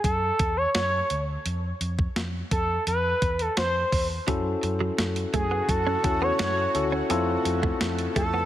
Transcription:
0.04 F#2 A4, kick, closed hi-hat
0.39 E2, kick, closed hi-hat
0.57 C#5
0.74 F#2 C#5, snare, closed hi-hat
1.10 D2, closed hi-hat
1.46 F2, closed hi-hat
1.81 F2, closed hi-hat
1.99 kick
2.16 F2, snare, closed hi-hat
2.51 F2 A4, kick, closed hi-hat
2.87 F2 B4, closed hi-hat
3.22 E2, kick, closed hi-hat
3.39 A4, closed hi-hat
3.57 F2 C5, snare, closed hi-hat
3.92 E2, kick, open hi-hat
4.27 F#2 C#3 F#3 A3 C#4 E4 F#4 A4, kick, closed hi-hat
4.63 F#2, muted clean electric guitar stroke, closed hi-hat
4.80 F#3
4.98 F#2, muted clean electric guitar stroke, snare, closed hi-hat
5.16 closed hi-hat
5.34 F#2 A3 G#4, kick, closed hi-hat
5.51 B3
5.69 F#2 A4, kick, closed hi-hat
5.87 C#4
6.03 E2 C#4 E4 F#4 A4, muted clean electric guitar stroke, kick, closed hi-hat
6.22 B3 C#5
6.39 F#2 A3 C#5, snare, closed hi-hat
6.57 muted clean electric guitar stroke
6.74 D2 C#4 E4 F#4 A4, closed hi-hat
6.92 C#4
7.10 F2 B3 C4 E4 F4 A4, closed hi-hat
7.45 F2, muted clean electric guitar stroke, closed hi-hat
7.63 A3, kick
7.81 F2, muted clean electric guitar stroke, snare, closed hi-hat
7.99 closed hi-hat
8.16 F2 A3 A4, kick, closed hi-hat
8.34 B3

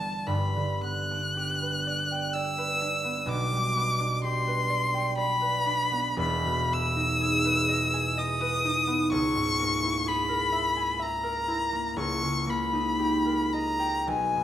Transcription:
Already playing: G1 G2 E3 B3 E4 G4 B4 E5 A5
0.00 G3
0.26 G1 G2 B5
0.56 D3
0.83 B3 F#6
1.11 D4
1.37 G4
1.62 B4
1.87 D5
2.11 G5
2.33 D5 E6
2.58 B4
2.81 D4
3.04 B3
3.26 B1 B2 D6
3.52 G3
3.76 B3
4.00 D4
4.24 G4 C6
4.47 B4
4.70 D5
4.94 G5
5.17 D5 B5
5.41 B4
5.66 D4
5.91 B3
6.16 E1 E2
6.21 B5
6.46 B2
6.71 B3 E6
6.96 D#4
7.21 G#4
7.45 B4
7.69 D#5
7.93 G#5
8.18 D#5 D#6
8.41 B4
8.65 D#4
8.87 B3
9.11 C#2 C#6
9.35 G#2
9.59 A#3
9.83 E4
10.06 G#4 B5
10.29 A#4
10.52 E5
10.76 G#5
10.99 E5 A#5
11.23 A#4
11.48 E4
11.73 A#3
11.96 C#2 C#6
12.22 C#3
12.47 A#3 B5
12.73 D#4
12.99 G4
13.26 A#4
13.53 D#5 A#5
13.79 G5
14.07 B1 G#5
14.36 B2

